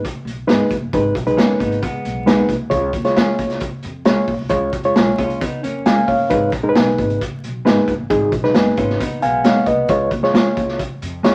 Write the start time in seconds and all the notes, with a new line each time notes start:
0.05 kick, closed hi-hat
0.14 muted upright bass stroke
0.25 B1, closed hi-hat
0.47 G#1 G#3 B3 D#4 G#4 B4, snare, closed hi-hat
0.71 F#1, kick, closed hi-hat
0.82 G1
0.93 G#1 G#3 D#4 B4, kick, closed hi-hat
1.15 B1, kick, closed hi-hat
1.27 G#3 D#4 B4, closed hi-hat
1.37 F#1 G#3 A#3 B3 C#4 D#4 G#4, snare, closed hi-hat
1.59 G#1 B3 D#4, kick, closed hi-hat
1.72 closed hi-hat
1.82 G#3 B3, kick, closed hi-hat
1.94 muted upright bass stroke
2.05 B1, closed hi-hat
2.26 G#3 B3 D#4 G#4 B4, snare, closed hi-hat
2.49 C2, kick, closed hi-hat
2.70 C#2 G#3 F4 C#5, kick, closed hi-hat
2.93 D#2, kick, closed hi-hat
3.05 G#3 F4 C#5, snare, closed hi-hat
3.16 F2 G#3 C#4 F4 G#4, snare, closed hi-hat
3.39 C#2, kick, closed hi-hat
3.50 snare, closed hi-hat
3.60 kick, closed hi-hat
3.74 muted upright bass stroke
3.83 F2, closed hi-hat
4.05 C#2 G#3 C#4 F4 G#4 C#5, snare, closed hi-hat
4.28 B1, kick, open hi-hat
4.41 C2
4.49 C#2 G#3 F4 C#5, kick, closed hi-hat
4.73 F2, kick, closed hi-hat
4.83 G#3 F4 C#5, closed hi-hat
4.96 B1 G#3 C#4 F4 G#4, snare, closed hi-hat
5.18 C#2 C#4 F4, kick, closed hi-hat
5.30 closed hi-hat
5.41 B3 D#4, kick, closed hi-hat
5.53 muted upright bass stroke
5.63 F2 A#3 C#4, closed hi-hat
5.86 G#3 C#4 F4 G#4 F5 G#5, snare, closed hi-hat
6.08 G1 C#5 F5, kick, open hi-hat
6.30 G#1 G#3 D#4 B4, kick, closed hi-hat
6.52 A#1, kick, closed hi-hat
6.63 G#3 D#4 A#4
6.69 B4
6.75 B1 G#3 B3 D#4 G#4, snare, closed hi-hat
6.98 G#1, kick, closed hi-hat
7.10 closed hi-hat
7.21 kick, closed hi-hat
7.33 muted upright bass stroke
7.44 B1, closed hi-hat
7.65 G#1 G#3 B3 D#4 G#4 B4, snare, closed hi-hat
7.88 F#1, kick, closed hi-hat
7.99 G1
8.10 G#1 G#3 D#4 G#4, kick, closed hi-hat
8.32 B1, kick, closed hi-hat
8.44 G#3 D#4 B4, snare
8.54 F#1 G#3 B3 D#4 G#4, snare, closed hi-hat
8.77 G#1 C#4 F4, kick, closed hi-hat
8.90 snare
9.00 B3 D#4, kick, closed hi-hat
9.12 muted upright bass stroke
9.22 B1 G#3 B3 F5 G#5, closed hi-hat
9.44 G#3 B3 D#4 G#4 C#5 F5, snare, closed hi-hat
9.66 C2 B4 D#5, kick, closed hi-hat
9.89 C#2 G#3 F4 C#5, kick, closed hi-hat
10.11 D#2, kick, closed hi-hat
10.23 G#3 F4 C#5, snare
10.34 F2 G#3 C#4 F4 G#4, snare, closed hi-hat
10.57 C#2, kick, closed hi-hat
10.68 snare
10.79 kick, closed hi-hat
10.92 muted upright bass stroke
11.02 F2, closed hi-hat
11.23 C#2 G#3 C#4 F4 G#4 C#5, snare, closed hi-hat